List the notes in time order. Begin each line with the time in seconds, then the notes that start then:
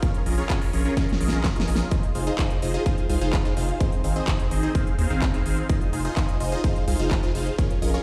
0.02 C#4 F4 G#4 A#4 C#5, kick, closed hi-hat
0.14 closed hi-hat
0.26 A#1 C#4 F4 G#4 A#4 D#5, open hi-hat
0.38 C#4 F4 G#4 A#4 C#5, closed hi-hat
0.50 C#4 F4 G#4 A#4 C#5, kick, clap, closed hi-hat
0.62 open hi-hat
0.73 A#1 C#4 F4 G#4 A#4 C#5, open hi-hat
0.85 C#4 F4 G#4 A#4 C#5, closed hi-hat
0.97 C#4 F4 A#4, kick, snare, closed hi-hat
1.09 snare, closed hi-hat
1.21 A#1 C#4 F4 G#4 A#4 D#5, open hi-hat
1.28 F4, snare
1.32 A#1 C#4 G#4 A#4 D#5
1.44 kick, snare, clap, closed hi-hat
1.56 C#4 F4 G#4 A#4 D#5, snare, closed hi-hat
1.68 A#1 C#4 F4 G#4 A#4 D#5, open hi-hat
1.76 snare, closed hi-hat
1.91 D#4 F4 G#4 C5 D#5, kick, closed hi-hat
2.03 closed hi-hat
2.15 F1 D#4 F4 G#4 C5 F5, open hi-hat
2.27 D#4 F4 G#4 C5 D#5, closed hi-hat
2.39 D#4 F4 G#4 C5, kick, clap, closed hi-hat
2.50 closed hi-hat
2.62 F1 D#4 F4 G#4 C5 D#5, open hi-hat
2.74 D#4 F4 G#4 C5 D#5, closed hi-hat
2.86 D#4 F4 G#4 C5 F5, kick, closed hi-hat
2.98 closed hi-hat
3.10 C2 D#4 F4 G#4 C5 F5, open hi-hat
3.21 F1 D#4 F4 G#4 C5 F5, closed hi-hat
3.33 kick, clap, closed hi-hat
3.45 D#4 F4 G#4 C5 F5, closed hi-hat
3.57 F1 D#4 F4 G#4 C5 F5, open hi-hat
3.69 closed hi-hat
3.80 C4 D#4 G#4 C5 D#5, kick, closed hi-hat
3.92 closed hi-hat
4.04 G#1 C4 D#4 G#4 C5 F5, open hi-hat
4.16 C4 D#4 G#4 C5 D#5, closed hi-hat
4.28 C4 D#4 G#4 C5 D#5, kick, clap, closed hi-hat
4.40 closed hi-hat
4.51 G#1 C4 D#4 G#4 C5 D#5, open hi-hat
4.63 C4 D#4 G#4 C5 D#5, closed hi-hat
4.75 C4 D#4 G#4 C5 F5, kick, closed hi-hat
4.87 closed hi-hat
4.99 D#2 C4 D#4 G#4 C5 F5, open hi-hat
5.10 G#1 C4 D#4 G#4 C5 F5, closed hi-hat
5.22 kick, clap, closed hi-hat
5.34 C4 D#4 G#4 C5 F5, closed hi-hat
5.46 G#1 C4 D#4 G#4 C5 F5, open hi-hat
5.58 closed hi-hat
5.69 D#4 F4 G#4 C5 D#5, kick, closed hi-hat
5.81 closed hi-hat
5.93 F1 D#4 F4 G#4 C5 F5, open hi-hat
6.05 D#4 F4 G#4 C5 D#5, closed hi-hat
6.17 D#4 F4 G#4 C5 D#5, kick, clap, closed hi-hat
6.29 closed hi-hat
6.40 F1 D#4 F4 G#4 C5 D#5, open hi-hat
6.52 D#4 F4 G#4 C5 D#5, closed hi-hat
6.64 D#4 F4 G#4 C5 F5, kick, closed hi-hat
6.76 closed hi-hat
6.88 C2 D#4 F4 G#4 C5 F5, open hi-hat
6.99 F1 D#4 F4 G#4 C5 F5
7.11 kick, clap, closed hi-hat
7.23 D#4 F4 G#4 C5 F5, closed hi-hat
7.35 F1 D#4 F4 G#4 C5 F5, open hi-hat
7.47 closed hi-hat
7.58 C#4 F4 G#4 A#4 C#5, kick, closed hi-hat
7.70 closed hi-hat
7.82 A#1 C#4 F4 G#4 A#4 D#5, open hi-hat
7.94 C#4 F4 G#4 A#4 C#5, closed hi-hat